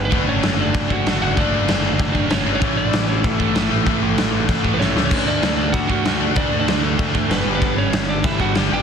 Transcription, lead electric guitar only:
0, 0, Header, 1, 2, 480
1, 0, Start_track
1, 0, Tempo, 312337
1, 181, Time_signature, 4, 2, 24, 8
1, 13558, End_track
2, 0, Start_track
2, 0, Title_t, "Lead electric guitar"
2, 0, Program_c, 0, 29
2, 77, Note_on_c, 0, 71, 103
2, 84, Note_on_c, 0, 59, 70
2, 405, Note_off_c, 0, 59, 0
2, 406, Note_off_c, 0, 71, 0
2, 431, Note_on_c, 0, 61, 84
2, 438, Note_on_c, 0, 73, 96
2, 874, Note_off_c, 0, 73, 0
2, 875, Note_off_c, 0, 61, 0
2, 932, Note_on_c, 0, 62, 71
2, 935, Note_on_c, 0, 74, 75
2, 1366, Note_off_c, 0, 62, 0
2, 1409, Note_off_c, 0, 74, 0
2, 1413, Note_on_c, 0, 66, 73
2, 1422, Note_on_c, 0, 78, 73
2, 1847, Note_off_c, 0, 66, 0
2, 1855, Note_off_c, 0, 78, 0
2, 1873, Note_on_c, 0, 78, 96
2, 1880, Note_on_c, 0, 66, 92
2, 2095, Note_off_c, 0, 66, 0
2, 2113, Note_on_c, 0, 62, 89
2, 2115, Note_off_c, 0, 78, 0
2, 2122, Note_on_c, 0, 74, 109
2, 3485, Note_off_c, 0, 62, 0
2, 3543, Note_on_c, 0, 61, 71
2, 3547, Note_off_c, 0, 74, 0
2, 3554, Note_on_c, 0, 73, 85
2, 3878, Note_off_c, 0, 61, 0
2, 3897, Note_off_c, 0, 73, 0
2, 3907, Note_on_c, 0, 61, 80
2, 3915, Note_on_c, 0, 73, 102
2, 4239, Note_off_c, 0, 61, 0
2, 4247, Note_on_c, 0, 62, 75
2, 4253, Note_off_c, 0, 73, 0
2, 4259, Note_on_c, 0, 74, 109
2, 4700, Note_off_c, 0, 62, 0
2, 4739, Note_on_c, 0, 61, 70
2, 4740, Note_off_c, 0, 74, 0
2, 4746, Note_on_c, 0, 73, 61
2, 4964, Note_off_c, 0, 61, 0
2, 4976, Note_on_c, 0, 57, 62
2, 4989, Note_off_c, 0, 73, 0
2, 4992, Note_on_c, 0, 69, 86
2, 7282, Note_on_c, 0, 71, 70
2, 7317, Note_off_c, 0, 57, 0
2, 7325, Note_off_c, 0, 69, 0
2, 7362, Note_off_c, 0, 71, 0
2, 7368, Note_on_c, 0, 73, 88
2, 7382, Note_on_c, 0, 61, 79
2, 7709, Note_off_c, 0, 73, 0
2, 7716, Note_off_c, 0, 61, 0
2, 7744, Note_on_c, 0, 61, 68
2, 7751, Note_on_c, 0, 73, 84
2, 8078, Note_off_c, 0, 61, 0
2, 8103, Note_off_c, 0, 73, 0
2, 8109, Note_on_c, 0, 74, 110
2, 8121, Note_on_c, 0, 62, 72
2, 8535, Note_off_c, 0, 74, 0
2, 8553, Note_on_c, 0, 74, 90
2, 8558, Note_off_c, 0, 62, 0
2, 8576, Note_on_c, 0, 62, 73
2, 8797, Note_on_c, 0, 78, 103
2, 8801, Note_off_c, 0, 62, 0
2, 8814, Note_off_c, 0, 74, 0
2, 8825, Note_on_c, 0, 66, 84
2, 9721, Note_off_c, 0, 66, 0
2, 9794, Note_on_c, 0, 74, 117
2, 9798, Note_off_c, 0, 78, 0
2, 9805, Note_on_c, 0, 62, 91
2, 10115, Note_off_c, 0, 74, 0
2, 10128, Note_off_c, 0, 62, 0
2, 10134, Note_on_c, 0, 74, 101
2, 10150, Note_on_c, 0, 62, 82
2, 10480, Note_off_c, 0, 62, 0
2, 10497, Note_on_c, 0, 69, 96
2, 10505, Note_on_c, 0, 57, 78
2, 10508, Note_off_c, 0, 74, 0
2, 11172, Note_off_c, 0, 57, 0
2, 11240, Note_off_c, 0, 69, 0
2, 11243, Note_on_c, 0, 71, 106
2, 11257, Note_on_c, 0, 59, 75
2, 11575, Note_off_c, 0, 59, 0
2, 11582, Note_off_c, 0, 71, 0
2, 11600, Note_on_c, 0, 71, 114
2, 11608, Note_on_c, 0, 59, 84
2, 11930, Note_off_c, 0, 59, 0
2, 11954, Note_on_c, 0, 61, 79
2, 11955, Note_off_c, 0, 71, 0
2, 11961, Note_on_c, 0, 73, 92
2, 12396, Note_off_c, 0, 61, 0
2, 12437, Note_on_c, 0, 74, 89
2, 12443, Note_off_c, 0, 73, 0
2, 12454, Note_on_c, 0, 62, 70
2, 12662, Note_off_c, 0, 62, 0
2, 12665, Note_off_c, 0, 74, 0
2, 12665, Note_on_c, 0, 76, 123
2, 12675, Note_on_c, 0, 64, 76
2, 12889, Note_off_c, 0, 64, 0
2, 12903, Note_off_c, 0, 76, 0
2, 12923, Note_on_c, 0, 66, 79
2, 12923, Note_on_c, 0, 78, 73
2, 13134, Note_off_c, 0, 78, 0
2, 13137, Note_off_c, 0, 66, 0
2, 13189, Note_on_c, 0, 67, 96
2, 13198, Note_on_c, 0, 79, 98
2, 13391, Note_off_c, 0, 67, 0
2, 13404, Note_off_c, 0, 79, 0
2, 13422, Note_on_c, 0, 79, 118
2, 13435, Note_on_c, 0, 67, 98
2, 13558, Note_off_c, 0, 67, 0
2, 13558, Note_off_c, 0, 79, 0
2, 13558, End_track
0, 0, End_of_file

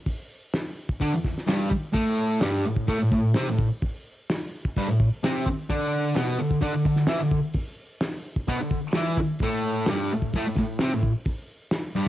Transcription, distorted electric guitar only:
0, 0, Header, 1, 3, 480
1, 0, Start_track
1, 0, Tempo, 470219
1, 65, Time_signature, 4, 2, 24, 8
1, 4865, Tempo, 463320
1, 12446, End_track
2, 0, Start_track
2, 0, Title_t, "Distorted electric guitar"
2, 0, Program_c, 0, 30
2, 1024, Note_on_c, 0, 50, 98
2, 1032, Note_on_c, 0, 62, 100
2, 1142, Note_off_c, 0, 50, 0
2, 1144, Note_on_c, 0, 40, 67
2, 1146, Note_off_c, 0, 62, 0
2, 1341, Note_off_c, 0, 40, 0
2, 1502, Note_on_c, 0, 43, 91
2, 1511, Note_on_c, 0, 55, 92
2, 1740, Note_off_c, 0, 43, 0
2, 1746, Note_off_c, 0, 55, 0
2, 1972, Note_on_c, 0, 45, 100
2, 1981, Note_on_c, 0, 57, 108
2, 2457, Note_off_c, 0, 45, 0
2, 2458, Note_on_c, 0, 43, 92
2, 2462, Note_off_c, 0, 57, 0
2, 2476, Note_on_c, 0, 55, 107
2, 2700, Note_off_c, 0, 43, 0
2, 2702, Note_on_c, 0, 45, 77
2, 2709, Note_off_c, 0, 55, 0
2, 2901, Note_off_c, 0, 45, 0
2, 2934, Note_on_c, 0, 45, 86
2, 2940, Note_on_c, 0, 57, 111
2, 3039, Note_off_c, 0, 45, 0
2, 3051, Note_on_c, 0, 45, 73
2, 3061, Note_off_c, 0, 57, 0
2, 3164, Note_off_c, 0, 45, 0
2, 3176, Note_on_c, 0, 45, 78
2, 3377, Note_off_c, 0, 45, 0
2, 3422, Note_on_c, 0, 48, 95
2, 3432, Note_on_c, 0, 60, 104
2, 3541, Note_off_c, 0, 48, 0
2, 3546, Note_off_c, 0, 60, 0
2, 3564, Note_on_c, 0, 45, 76
2, 3750, Note_off_c, 0, 45, 0
2, 4869, Note_on_c, 0, 43, 87
2, 4875, Note_on_c, 0, 55, 105
2, 4978, Note_on_c, 0, 45, 73
2, 4981, Note_off_c, 0, 43, 0
2, 4984, Note_off_c, 0, 55, 0
2, 5175, Note_off_c, 0, 45, 0
2, 5348, Note_on_c, 0, 48, 87
2, 5364, Note_on_c, 0, 60, 103
2, 5582, Note_off_c, 0, 48, 0
2, 5591, Note_off_c, 0, 60, 0
2, 5826, Note_on_c, 0, 50, 85
2, 5833, Note_on_c, 0, 62, 106
2, 6299, Note_off_c, 0, 50, 0
2, 6303, Note_on_c, 0, 47, 98
2, 6306, Note_off_c, 0, 62, 0
2, 6318, Note_on_c, 0, 59, 97
2, 6541, Note_off_c, 0, 47, 0
2, 6548, Note_on_c, 0, 50, 72
2, 6549, Note_off_c, 0, 59, 0
2, 6743, Note_off_c, 0, 50, 0
2, 6776, Note_on_c, 0, 50, 89
2, 6789, Note_on_c, 0, 62, 98
2, 6898, Note_off_c, 0, 50, 0
2, 6905, Note_off_c, 0, 62, 0
2, 6909, Note_on_c, 0, 50, 69
2, 7023, Note_off_c, 0, 50, 0
2, 7035, Note_on_c, 0, 50, 74
2, 7227, Note_off_c, 0, 50, 0
2, 7258, Note_on_c, 0, 52, 86
2, 7273, Note_on_c, 0, 64, 100
2, 7379, Note_off_c, 0, 52, 0
2, 7386, Note_on_c, 0, 50, 72
2, 7387, Note_off_c, 0, 64, 0
2, 7583, Note_off_c, 0, 50, 0
2, 8712, Note_on_c, 0, 47, 87
2, 8722, Note_on_c, 0, 59, 106
2, 8827, Note_off_c, 0, 47, 0
2, 8832, Note_off_c, 0, 59, 0
2, 8840, Note_on_c, 0, 50, 69
2, 9030, Note_off_c, 0, 50, 0
2, 9202, Note_on_c, 0, 52, 96
2, 9216, Note_on_c, 0, 64, 90
2, 9431, Note_off_c, 0, 52, 0
2, 9439, Note_off_c, 0, 64, 0
2, 9688, Note_on_c, 0, 45, 89
2, 9698, Note_on_c, 0, 57, 95
2, 10154, Note_off_c, 0, 45, 0
2, 10159, Note_off_c, 0, 57, 0
2, 10169, Note_on_c, 0, 43, 99
2, 10183, Note_on_c, 0, 55, 104
2, 10394, Note_off_c, 0, 43, 0
2, 10401, Note_off_c, 0, 55, 0
2, 10418, Note_on_c, 0, 45, 74
2, 10598, Note_off_c, 0, 45, 0
2, 10651, Note_on_c, 0, 45, 92
2, 10668, Note_on_c, 0, 57, 102
2, 10755, Note_off_c, 0, 45, 0
2, 10763, Note_off_c, 0, 57, 0
2, 10772, Note_on_c, 0, 45, 75
2, 10874, Note_off_c, 0, 45, 0
2, 10886, Note_on_c, 0, 45, 76
2, 11071, Note_off_c, 0, 45, 0
2, 11116, Note_on_c, 0, 48, 94
2, 11133, Note_on_c, 0, 60, 99
2, 11227, Note_off_c, 0, 48, 0
2, 11235, Note_off_c, 0, 60, 0
2, 11258, Note_on_c, 0, 45, 76
2, 11436, Note_off_c, 0, 45, 0
2, 12311, Note_on_c, 0, 43, 94
2, 12323, Note_on_c, 0, 55, 102
2, 12446, Note_off_c, 0, 43, 0
2, 12446, Note_off_c, 0, 55, 0
2, 12446, End_track
3, 0, Start_track
3, 0, Title_t, "Muted distorted electric guitar strokes"
3, 1745, Note_on_c, 9, 29, 57
3, 1847, Note_off_c, 9, 29, 0
3, 5592, Note_on_c, 9, 29, 54
3, 5696, Note_off_c, 9, 29, 0
3, 9453, Note_on_c, 9, 29, 60
3, 9557, Note_off_c, 9, 29, 0
3, 12446, End_track
0, 0, End_of_file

